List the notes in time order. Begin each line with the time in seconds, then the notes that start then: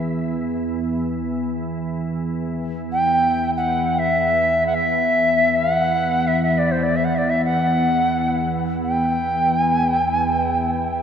Already playing: E2 E3
1.62 E2 E3
2.92 G5
3.57 F#5
3.89 F#5
3.99 E5
4.67 F#5
4.74 E5
5.57 F#5
6.27 E5
6.43 E5
6.58 D5
6.71 C5
6.83 D5
6.96 E5
7.05 F#5
7.15 D5 E5
7.30 E5
7.45 F#5
8.84 G5
9.64 G#5
9.86 G5
10.09 G#5
10.31 G5